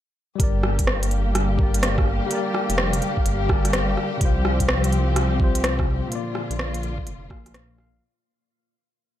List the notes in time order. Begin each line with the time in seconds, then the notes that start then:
0.36 G1 G3 A#3 G4
0.40 D3 G3 G4 A#4 D5 F5, kick, closed hi-hat
0.63 cross-stick
0.79 kick, closed hi-hat
0.87 cross-stick
1.03 closed hi-hat
1.11 closed hi-hat
1.35 cross-stick, closed hi-hat
1.55 G3 G4, kick
1.60 A#4 D5
1.74 closed hi-hat
1.83 cross-stick, closed hi-hat
1.98 kick, cross-stick
2.27 G3 G4
2.31 A#4, closed hi-hat
2.35 D5
2.54 cross-stick
2.69 F1, closed hi-hat
2.78 cross-stick
2.93 closed hi-hat
3.02 closed hi-hat
3.17 kick
3.26 G1, closed hi-hat
3.45 G3 G4
3.49 G1 A#4 D5, kick, cross-stick
3.65 cross-stick, closed hi-hat
3.73 cross-stick, closed hi-hat
3.97 cross-stick
4.17 C2 C3 G3, kick, closed hi-hat
4.22 F3 C4 F4 C5
4.45 cross-stick
4.60 kick, closed hi-hat
4.69 cross-stick
4.84 closed hi-hat
4.92 closed hi-hat
5.16 cross-stick, closed hi-hat
5.36 C3 G3, kick
5.41 F4 C5
5.55 closed hi-hat
5.64 cross-stick, closed hi-hat
5.79 kick, cross-stick
6.07 A#2 D3 F3 A#3 F4
6.12 F4 D5, closed hi-hat
6.35 cross-stick
6.50 A#1, closed hi-hat
6.59 cross-stick
6.74 closed hi-hat
6.83 closed hi-hat
6.98 kick
7.07 F1, closed hi-hat
7.29 A#1 A#2 A#3 F4 F5, kick, cross-stick
7.46 cross-stick, closed hi-hat
7.54 cross-stick, closed hi-hat
7.76 A#2 A#3 F4 F5, cross-stick